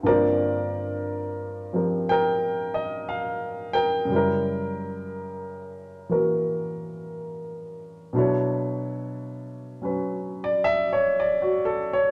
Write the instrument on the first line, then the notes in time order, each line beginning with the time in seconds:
grand piano
0.03 G2 D3 A#3 C4 A#4 D5
0.08 F4 C5
1.73 F3 C4 G4 A#4
2.09 A#4 G5
2.74 D#5
3.09 F5
3.73 A#4 G5
4.05 F#2 C#3
4.10 G3 E4
4.16 A#4
6.09 E3 A#3 F#4 A#4
8.13 B2 F#3 D4 E4
8.18 A4 C#5
9.82 F#3 C#4 F#4 B4
10.44 D5
10.64 E5
10.93 C#5
11.20 D5
11.42 F#4
11.65 A4
11.93 C#5